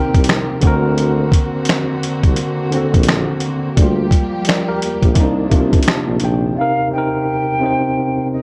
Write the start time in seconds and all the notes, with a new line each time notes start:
Already playing: C3 D#3 A#3 C4 D#4 G4 A#4 G5
0.14 C2, kick, closed hi-hat
0.24 closed hi-hat
0.29 finger snap, snare
0.61 D2 D3 A#3 C4 F#4, kick, closed hi-hat
0.65 F#4 A#4
0.98 closed hi-hat
1.32 kick, closed hi-hat
1.65 closed hi-hat
1.69 finger snap, snare
2.03 closed hi-hat
2.23 C2, kick, closed hi-hat
2.36 closed hi-hat
2.71 D3 C4, closed hi-hat
2.75 F#4 A4
2.94 A#1, kick, closed hi-hat
3.03 closed hi-hat
3.08 finger snap, snare
3.40 closed hi-hat
3.77 D2 F3 G3 A#3 G4, kick, closed hi-hat
3.83 F4
4.11 kick, closed hi-hat
4.45 A#4 D5, closed hi-hat
4.49 finger snap, snare
4.68 G4 A#4
4.82 closed hi-hat
5.02 A#1 G4, kick, closed hi-hat
5.14 C2 C3 D#3 A#3 D4, kick, closed hi-hat
5.19 D4 D#4
5.49 C2 C3 A#3, kick, closed hi-hat
5.54 D4 F4
5.73 kick, closed hi-hat
5.83 closed hi-hat
5.88 A5, finger snap, snare
6.07 A#1
6.20 A#1, closed hi-hat
6.25 G5
6.54 C3 C4 F5
6.59 D#4 A#4
6.91 C3 C4 G5
6.96 D#4 A#4
7.59 C3 C4
7.63 D#4 C5
8.33 D#5